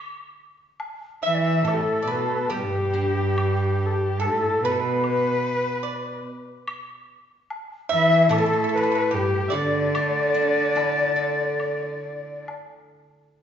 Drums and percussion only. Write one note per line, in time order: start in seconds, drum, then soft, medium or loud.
0.80 low woodblock soft
1.68 high woodblock soft
3.38 high woodblock medium
4.22 low woodblock soft
5.04 high woodblock soft
6.68 high woodblock medium
7.50 low woodblock soft
8.32 high woodblock soft
9.95 high woodblock medium
10.77 low woodblock soft
11.60 high woodblock soft
12.48 low woodblock soft